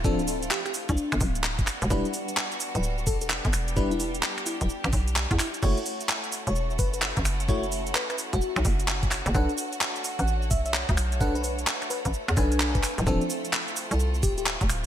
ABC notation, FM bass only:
X:1
M:4/4
L:1/16
Q:"Swing 16ths" 1/4=129
K:F#phr
V:1 name="FM bass" clef=bass
D,,,4 z3 =C,, z G,,, D,,,4 z E,,, | E,,, z6 D,,,3 E,,,3 G,,, E,,,2- | E,,,4 z3 D,,, z A,,, B,,,3 E,, z2 | F,,, z6 E,,,3 F,,,3 A,,, F,,,2- |
F,,,4 z3 E,,, z B,,, F,,,4- F,,, F,,, | B,,, z6 A,,,3 B,,,3 D,, B,,,2- | B,,,4 z3 A,,, z E,, B,,,4 z D,,, | D,,, z6 =C,,3 D,,,3 =F,,, D,,,2 |]